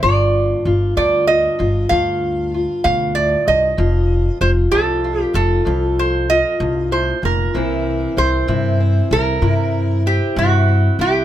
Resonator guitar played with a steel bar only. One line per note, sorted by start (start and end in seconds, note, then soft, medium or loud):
0.03 0.96 D5 medium
0.97 1.27 D5 medium
1.27 1.89 D#5 medium
1.89 2.83 F5 loud
2.84 3.14 F5 loud
3.15 3.45 D5 medium
3.48 4.37 D#5 medium
4.41 4.50 C5 medium
4.71 5.21 A4 medium
5.21 5.34 G4 medium
5.35 6.00 A4 loud
5.99 6.28 C5 medium
6.30 6.88 D#5 loud
6.92 7.21 C5 medium
7.25 8.21 A#4 medium
8.18 9.12 C5 medium
9.13 10.02 A#4 medium
10.07 10.38 G4 medium
10.39 10.97 F#4 medium
11.01 11.25 G4 medium